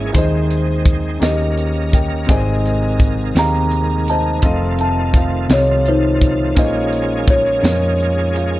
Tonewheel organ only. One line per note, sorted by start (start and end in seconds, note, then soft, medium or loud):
0.00 0.13 E3 medium
0.00 0.11 G#3 medium
0.00 0.13 A#3 medium
0.00 0.13 C#4 medium
0.00 0.13 G#4 medium
0.15 1.21 G#3 medium
0.15 1.21 C4 medium
0.15 1.21 D#4 medium
1.22 6.53 D#3 medium
1.22 2.28 A#3 medium
1.22 2.28 C#4 medium
1.22 4.40 A#4 medium
2.29 6.53 C3 medium
2.29 4.41 G#3 medium
4.43 6.55 F3 medium
4.43 6.55 A3 medium
4.43 6.55 F4 medium
6.58 8.60 F3 medium
6.58 8.60 G#3 medium
6.58 8.60 A#3 medium
6.58 8.60 C#4 medium
6.58 8.60 G#4 medium